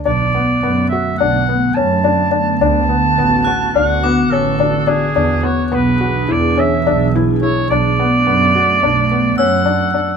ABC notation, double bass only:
X:1
M:9/8
L:1/8
Q:3/8=71
K:Bm
V:1 name="Double bass" clef=bass
B,,, z F,,2 B,,,2 F,,3 | D,, z A,,,2 D,,2 A,,,3 | E,, z B,,,2 E,,2 B,,,3 | B,,, z F,,2 B,,,2 F,,3 |]